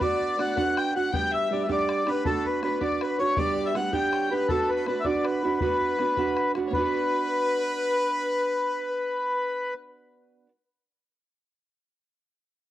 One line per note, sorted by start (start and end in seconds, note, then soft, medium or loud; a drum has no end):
0.00 0.38 B3 medium
0.00 0.38 D4 medium
0.00 0.39 F#4 medium
0.00 0.40 B4 medium
0.00 0.58 D5 loud
0.00 0.36 D5 loud
0.00 0.41 D5 loud
0.00 bodhran medium
0.21 bodhran soft
0.38 0.56 B3 medium
0.38 0.57 D4 medium
0.38 0.56 F#4 medium
0.38 0.55 B4 medium
0.38 0.56 F#5 medium
0.38 0.56 F#5 loud
0.38 bodhran medium
0.57 1.12 B3 medium
0.57 0.96 D4 medium
0.57 0.95 F#4 medium
0.57 0.94 B4 medium
0.57 0.79 F#5 loud
0.57 0.75 F#5 loud
0.57 0.78 F#5 loud
0.57 bodhran medium
0.67 bodhran soft
0.77 0.94 G5 medium
0.77 0.94 G5 loud
0.77 bodhran medium
0.94 1.12 D4 soft
0.94 1.13 F#4 medium
0.94 1.13 B4 medium
0.94 1.14 F#5 loud
0.94 1.12 F#5 loud
0.94 1.14 F#5 loud
1.12 1.49 G3 medium
1.12 1.51 B3 medium
1.12 1.52 D4 medium
1.12 1.51 G4 medium
1.12 1.33 G5 loud
1.12 1.32 G5 medium
1.12 1.34 G5 loud
1.12 bodhran medium
1.32 1.68 E5 loud
1.32 1.50 E5 medium
1.32 1.52 E5 loud
1.32 bodhran soft
1.51 1.69 G3 medium
1.51 1.68 B3 medium
1.51 1.68 D4 medium
1.51 1.67 G4 medium
1.51 1.68 D5 medium
1.51 1.62 D5 medium
1.64 1.70 E5 medium
1.69 2.07 G3 medium
1.69 2.08 B3 medium
1.69 2.07 D4 medium
1.69 2.05 G4 medium
1.69 2.09 D5 medium
1.69 2.04 D5 medium
1.69 2.09 D5 loud
1.69 bodhran medium
1.80 bodhran soft
1.89 bodhran medium
2.06 2.24 B3 medium
2.06 2.24 D4 medium
2.06 2.25 G4 medium
2.06 2.24 B4 medium
2.06 2.25 B4 medium
2.06 2.26 B4 loud
2.06 bodhran medium
2.25 2.62 B3 medium
2.25 2.63 D4 medium
2.25 2.63 F#4 medium
2.25 2.47 A4 medium
2.25 2.46 A4 loud
2.25 2.65 B4 medium
2.25 bodhran medium
2.45 2.61 B4 medium
2.45 2.63 B4 medium
2.45 bodhran soft
2.62 2.81 B3 medium
2.62 2.80 D4 medium
2.62 2.80 F#4 medium
2.62 2.79 B4 medium
2.62 2.83 B4 medium
2.62 2.82 B4 loud
2.62 2.79 B4 medium
2.62 bodhran medium
2.80 3.36 B3 medium
2.80 3.21 D4 medium
2.80 3.19 F#4 medium
2.80 3.18 B4 medium
2.80 2.99 D5 medium
2.80 3.03 D5 medium
2.80 3.02 D5 loud
2.80 bodhran medium
2.91 bodhran soft
3.01 3.18 B4 medium
3.01 3.22 B4 medium
3.01 3.19 B4 loud
3.01 bodhran medium
3.18 3.37 D4 soft
3.18 3.37 F#4 medium
3.18 3.37 B4 medium
3.18 3.35 C#5 medium
3.18 3.38 C#5 loud
3.18 3.36 C#5 loud
3.36 3.73 G3 medium
3.36 3.75 B3 medium
3.36 3.76 D4 medium
3.36 3.76 G4 medium
3.36 3.66 D5 loud
3.36 3.68 D5 loud
3.36 3.67 D5 loud
3.36 bodhran loud
3.57 bodhran soft
3.65 3.74 E5 medium
3.65 3.75 E5 medium
3.65 3.76 E5 medium
3.74 3.93 G3 medium
3.74 3.93 B3 medium
3.74 3.92 D4 medium
3.74 3.92 G4 medium
3.74 3.94 F#5 medium
3.74 3.93 F#5 medium
3.74 3.93 F#5 loud
3.74 bodhran medium
3.92 4.32 G3 medium
3.92 4.33 B3 medium
3.92 4.32 D4 medium
3.92 4.30 G4 medium
3.92 4.10 G5 medium
3.92 4.33 G5 medium
3.92 4.33 G5 loud
3.92 bodhran medium
4.03 bodhran soft
4.11 4.32 C#5 medium
4.11 bodhran medium
4.31 4.48 B3 medium
4.31 4.49 D4 medium
4.31 4.49 G4 medium
4.31 4.48 B4 medium
4.31 4.50 B4 medium
4.31 4.51 B4 loud
4.49 4.86 B3 medium
4.49 4.87 D4 medium
4.49 4.88 F#4 medium
4.49 4.61 A4 medium
4.49 4.70 A4 loud
4.49 4.71 A4 medium
4.49 4.89 B4 medium
4.49 bodhran medium
4.62 4.74 A4 medium
4.69 4.86 B4 medium
4.69 4.87 B4 medium
4.69 bodhran soft
4.75 4.86 A4 medium
4.86 5.05 B3 medium
4.86 5.05 D4 medium
4.86 5.04 F#4 medium
4.86 5.01 B4 medium
4.86 5.07 B4 medium
4.86 5.03 B4 medium
4.86 bodhran medium
5.00 5.05 E5 medium
5.04 5.60 B3 medium
5.04 5.45 D4 medium
5.04 5.43 F#4 medium
5.04 5.42 B4 medium
5.04 5.25 D5 loud
5.04 5.24 D5 medium
5.04 5.26 D5 medium
5.04 bodhran medium
5.15 bodhran soft
5.24 5.61 B4 medium
5.24 5.60 B4 loud
5.24 5.59 B4 medium
5.24 bodhran medium
5.43 5.60 D4 medium
5.43 5.60 F#4 medium
5.43 5.61 B4 medium
5.60 5.99 B3 medium
5.60 5.99 D4 medium
5.60 6.00 F#4 medium
5.60 6.51 B4 medium
5.60 6.52 B4 loud
5.60 6.52 B4 medium
5.60 6.01 B4 medium
5.60 bodhran medium
5.81 bodhran soft
5.99 6.17 B3 medium
5.99 6.18 D4 medium
5.99 6.17 F#4 medium
5.99 6.16 B4 medium
5.99 bodhran medium
6.17 6.70 B3 medium
6.17 6.57 D4 medium
6.17 6.56 F#4 medium
6.17 6.55 B4 medium
6.17 bodhran medium
6.27 bodhran soft
6.37 bodhran medium
6.55 6.73 D4 medium
6.55 6.74 F#4 medium
6.55 6.73 B4 medium
6.55 bodhran medium
6.67 10.46 B3 medium
6.67 6.75 C#5 medium
6.73 10.48 D4 medium
6.73 9.78 B4 loud
6.73 9.74 B4 loud
6.73 bodhran medium
6.78 10.50 F#4 medium
6.78 10.51 B4 medium